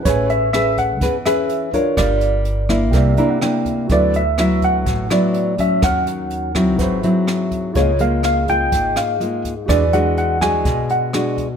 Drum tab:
HH |xxxxxxxx|xxxxxxxx|xxxxxxxx|xxxxxxxx|
SD |--r--r--|r--r--r-|--r--r--|r--r--r-|
BD |o--oo--o|o--oo--o|o--oo--o|o--oo--o|

HH |xxxxxxxx|xxxxxxxx|
SD |--r--r--|r--r--r-|
BD |o--oo--o|o--oo--o|